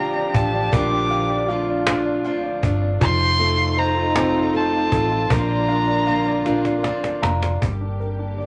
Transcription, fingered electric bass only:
0.00 0.31 A#1 medium
0.34 0.70 A1 medium
0.73 2.59 A#1 medium
2.63 2.99 G1 medium
3.01 4.88 F1 loud
4.92 5.28 A1 medium
5.30 7.19 A#1 medium
7.22 7.59 F1 medium
7.62 8.46 G1 medium

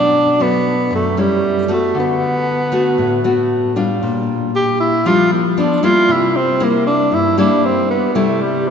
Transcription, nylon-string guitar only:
0.00 0.89 B2 medium
0.00 0.36 F#3 medium
0.00 0.36 A3 medium
0.00 0.36 D4 medium
0.40 1.13 F#3 soft
0.40 1.13 A3 soft
0.40 1.14 D4 medium
0.91 1.40 F#2 medium
1.17 1.65 G3 soft
1.17 1.65 C#4 medium
1.17 1.65 E4 medium
1.68 2.68 A3 soft
1.68 2.68 B3 medium
1.68 2.68 F#4 medium
1.95 2.96 D3 medium
2.72 3.20 A3 medium
2.72 3.20 B3 medium
2.72 3.20 F#4 medium
2.98 3.99 A2 medium
3.24 3.72 A3 medium
3.24 3.72 B3 medium
3.24 3.72 F#4 medium
3.76 4.49 G3 medium
3.76 4.49 D4 medium
3.76 4.50 F4 medium
4.03 5.03 A#2 medium
5.05 5.54 F3 medium
5.05 5.39 G3 medium
5.05 5.39 D4 medium
5.05 5.39 F4 medium
5.57 5.79 F3 medium
5.57 5.79 B3 medium
5.57 5.79 D4 medium
5.83 6.56 G3 medium
5.83 6.56 A#3 medium
5.83 6.56 E4 medium
6.09 7.09 C3 medium
6.60 7.33 G3 medium
6.60 7.34 A#3 soft
6.60 7.34 E4 medium
7.12 8.12 G2 medium
7.38 8.11 G3 medium
7.38 8.11 A#3 medium
7.38 8.11 E4 medium
8.15 8.70 C3 medium
8.15 8.70 G3 medium
8.15 8.70 A3 medium
8.15 8.70 E4 medium

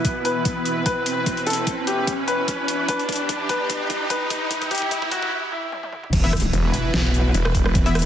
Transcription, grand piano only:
0.00 0.18 B4 medium
0.25 0.78 B4 medium
0.86 1.39 B4 medium
1.47 1.71 A4 medium
1.87 2.11 G4 medium
2.28 2.81 B4 medium
2.88 3.42 B4 loud
3.49 4.03 B4 medium
4.10 4.63 B4 medium
4.71 4.95 G4 medium
5.12 5.35 F#4 medium
5.52 6.05 E4 loud

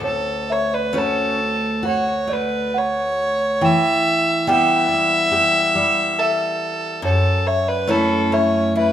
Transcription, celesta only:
0.04 0.46 C#5 medium
0.50 0.72 E5 medium
0.74 0.96 D5 medium
0.96 1.85 C#5 medium
1.86 2.26 F#5 medium
2.29 2.73 D5 medium
2.74 3.62 F#5 medium
3.62 4.47 G5 medium
4.48 6.15 G5 medium
6.20 7.04 E5 medium
7.05 7.43 C#5 medium
7.47 7.68 E5 medium
7.68 7.89 D5 medium
7.89 8.32 C#5 medium
8.33 8.76 E5 medium
8.77 8.93 E5 medium

